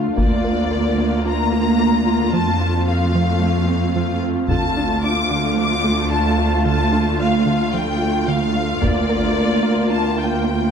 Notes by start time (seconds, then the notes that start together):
Already playing: D2 A3 D4 F4 F5
0.17 D2 A#3 F4 D5, taiko
0.44 A#4
0.71 A#4
0.98 A#3
1.26 D4 A#5
1.53 F4
1.79 A#3
2.07 F4
2.33 F2 F3 A3 C4 F4 F5 A5
2.61 F4
2.88 F4 F5
3.15 F3
3.42 A3
3.69 C4
3.96 F3
4.23 C4
4.49 D2 D3 A3 D4 F4 A5, taiko
4.77 D4
5.04 D4 D6
5.31 D3
5.58 F3 D6
5.84 A3
6.11 D3 A5
6.38 A3
6.66 D3 A5
6.92 D4
7.19 D4 F5
7.46 D3
7.74 F3 G5
8.01 A3
8.28 D3 F5
8.55 A3
8.82 D2 A#3 F4 D5 F5, taiko
9.09 A#4
9.36 A#4
9.63 A#3
9.90 D4 A5
10.18 F4 G5
10.44 A#3